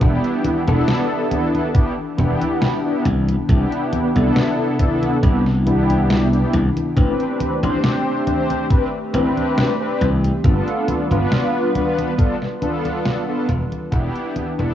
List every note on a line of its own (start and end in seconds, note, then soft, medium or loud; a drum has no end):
0.00 0.16 E1 loud
0.00 3.02 E3 medium
0.00 0.61 B3 medium
0.00 6.93 D4 medium
0.00 0.62 D4 medium
0.00 0.62 E4 medium
0.00 3.02 G4 medium
0.00 0.62 G4 medium
0.00 kick loud
0.00 closed hi-hat medium
0.00 high conga soft
0.24 closed hi-hat soft
0.44 closed hi-hat medium
0.44 high conga medium
0.66 0.81 E1 loud
0.66 1.26 B3 loud
0.66 1.26 D4 medium
0.66 1.26 E4 medium
0.66 1.27 A4 loud
0.66 closed hi-hat medium
0.66 high conga soft
0.88 snare loud
0.88 closed hi-hat medium
0.88 high conga soft
1.30 1.69 B3 medium
1.30 1.70 D4 medium
1.30 1.70 E4 medium
1.30 1.70 A4 medium
1.30 closed hi-hat medium
1.30 high conga medium
1.55 closed hi-hat medium
1.55 high conga soft
1.74 1.92 B3 medium
1.74 1.92 D4 medium
1.74 1.92 E4 medium
1.74 1.93 G4 loud
1.74 kick loud
1.74 closed hi-hat medium
1.74 high conga soft
2.17 2.34 E1 loud
2.17 2.79 B3 medium
2.17 2.79 D4 medium
2.17 2.79 E4 medium
2.17 2.80 G4 medium
2.17 closed hi-hat medium
2.17 high conga medium
2.41 closed hi-hat medium
2.41 high conga soft
2.62 snare loud
2.62 closed hi-hat medium
2.62 high conga soft
2.84 3.02 B3 medium
2.84 3.03 D4 medium
2.84 3.03 E4 medium
2.84 3.03 G4 medium
3.05 3.35 C2 medium
3.05 6.92 C3 medium
3.05 6.92 B3 medium
3.05 6.92 E4 medium
3.05 closed hi-hat medium
3.05 high conga medium
3.28 closed hi-hat medium
3.28 high conga soft
3.48 3.64 C2 loud
3.48 4.09 B3 medium
3.48 4.10 D4 medium
3.48 4.10 E4 medium
3.48 4.10 G4 medium
3.48 kick loud
3.48 closed hi-hat medium
3.48 high conga soft
3.72 closed hi-hat soft
3.93 closed hi-hat medium
3.93 high conga medium
4.15 4.29 C2 loud
4.15 4.74 B3 loud
4.15 4.74 D4 medium
4.15 4.74 E4 medium
4.15 4.75 A4 loud
4.15 closed hi-hat medium
4.15 high conga soft
4.36 snare loud
4.36 closed hi-hat medium
4.36 high conga soft
4.78 5.17 B3 medium
4.78 5.18 D4 medium
4.78 5.18 E4 medium
4.78 5.18 A4 medium
4.78 kick medium
4.78 closed hi-hat medium
4.78 high conga medium
5.03 closed hi-hat medium
5.03 high conga soft
5.22 6.43 C2 medium
5.22 5.40 B3 medium
5.22 5.40 D4 medium
5.22 5.40 E4 medium
5.22 5.40 G4 medium
5.22 kick loud
5.22 closed hi-hat medium
5.22 high conga soft
5.46 snare soft
5.65 6.27 B3 medium
5.65 6.27 D4 medium
5.65 6.27 E4 medium
5.65 6.28 G4 loud
5.65 closed hi-hat medium
5.65 high conga medium
5.90 closed hi-hat medium
5.90 high conga soft
6.10 snare loud
6.10 closed hi-hat medium
6.10 high conga soft
6.32 6.58 B3 medium
6.32 6.58 D4 medium
6.32 6.58 E4 medium
6.32 6.58 G4 medium
6.32 closed hi-hat soft
6.53 6.69 C2 loud
6.53 closed hi-hat medium
6.53 high conga medium
6.77 closed hi-hat medium
6.77 high conga soft
6.96 7.12 A1 medium
6.96 10.41 A3 medium
6.96 7.57 C4 medium
6.96 10.41 C4 medium
6.96 7.57 D4 medium
6.96 10.41 G4 medium
6.96 7.58 G4 medium
6.96 7.58 B4 medium
6.96 kick loud
6.96 closed hi-hat medium
6.96 high conga soft
7.20 closed hi-hat soft
7.41 closed hi-hat medium
7.41 high conga medium
7.62 7.77 A1 loud
7.62 8.22 C4 loud
7.62 8.22 D4 medium
7.62 8.22 G4 medium
7.62 8.22 C5 loud
7.62 closed hi-hat medium
7.62 high conga soft
7.84 snare loud
7.84 closed hi-hat medium
7.84 high conga soft
8.26 8.65 C4 medium
8.26 8.65 D4 medium
8.26 8.66 G4 medium
8.26 8.66 C5 medium
8.26 closed hi-hat medium
8.26 high conga medium
8.50 closed hi-hat medium
8.50 high conga soft
8.70 8.88 C4 medium
8.70 8.88 D4 medium
8.70 8.88 G4 medium
8.70 8.88 B4 medium
8.70 kick loud
8.70 closed hi-hat medium
8.70 high conga soft
9.13 9.29 A1 medium
9.13 9.75 C4 medium
9.13 9.75 D4 medium
9.13 9.75 G4 medium
9.13 9.75 B4 loud
9.13 closed hi-hat medium
9.13 high conga medium
9.37 closed hi-hat medium
9.37 high conga soft
9.58 snare loud
9.58 closed hi-hat medium
9.58 high conga soft
9.80 10.05 C4 medium
9.80 10.06 D4 medium
9.80 10.06 G4 medium
9.80 10.06 B4 medium
10.01 10.31 C2 medium
10.01 closed hi-hat medium
10.01 high conga medium
10.24 closed hi-hat soft
10.24 high conga soft
10.44 10.60 G1 loud
10.44 13.46 G3 medium
10.44 11.05 B3 medium
10.44 11.05 D4 medium
10.44 13.46 F4 medium
10.44 11.06 F4 medium
10.44 11.06 A4 medium
10.44 13.46 B4 medium
10.44 kick loud
10.44 closed hi-hat medium
10.44 high conga soft
10.68 closed hi-hat soft
10.88 closed hi-hat medium
10.88 high conga medium
11.10 11.25 G1 loud
11.10 11.69 B3 loud
11.10 11.70 D4 medium
11.10 11.70 F4 medium
11.10 11.70 B4 loud
11.10 closed hi-hat medium
11.10 high conga soft
11.32 snare loud
11.32 closed hi-hat medium
11.32 high conga soft
11.74 12.13 B3 medium
11.74 12.13 D4 medium
11.74 12.13 F4 medium
11.74 12.14 B4 medium
11.74 closed hi-hat medium
11.74 high conga medium
11.98 closed hi-hat medium
11.98 high conga soft
12.17 12.35 B3 medium
12.17 12.36 D4 medium
12.17 12.36 F4 medium
12.17 12.36 A4 medium
12.17 kick loud
12.17 closed hi-hat medium
12.17 high conga soft
12.42 snare soft
12.61 13.23 B3 medium
12.61 13.23 D4 medium
12.61 13.23 F4 medium
12.61 13.23 A4 loud
12.61 closed hi-hat medium
12.61 high conga medium
12.85 closed hi-hat medium
12.85 high conga soft
13.06 snare loud
13.06 closed hi-hat medium
13.06 high conga soft
13.28 13.46 B3 medium
13.28 13.46 D4 medium
13.28 13.46 F4 medium
13.28 13.47 A4 medium
13.49 13.64 E1 loud
13.49 14.74 E3 medium
13.49 14.74 D4 medium
13.49 14.74 G4 medium
13.49 closed hi-hat medium
13.49 high conga medium
13.72 closed hi-hat soft
13.72 high conga soft
13.91 14.08 E1 loud
13.91 14.53 B3 medium
13.91 14.53 D4 medium
13.91 14.53 E4 medium
13.91 14.53 G4 medium
13.91 kick loud
13.91 closed hi-hat medium
13.91 high conga soft
14.15 closed hi-hat soft
14.36 closed hi-hat medium
14.36 high conga medium
14.58 14.72 E1 loud
14.58 14.74 B3 loud
14.58 14.74 D4 medium
14.58 14.74 E4 medium
14.58 14.74 A4 loud
14.58 closed hi-hat medium
14.58 high conga soft